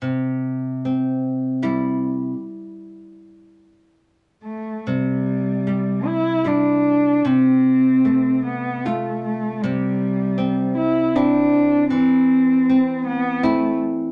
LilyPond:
<<
  \new Staff \with { instrumentName = "Cello" } { \time 3/4 \key c \major \tempo 4 = 76 r2. | r2 r8 a8 | g4. e'8 d'4 | c'4. b8 a8 a8 |
g4. e'8 d'4 | c'4. b8 a8 r8 | }
  \new Staff \with { instrumentName = "Nylon-string guitar" } { \time 3/4 \key c \major c4 c'4 <g e'>4~ | <g e'>2. | c4 g4 <g e'>4 | c4 a4 <a f'>4 |
c4 c'4 <c' e'>4 | e4 c'4 <c' e'>4 | }
>>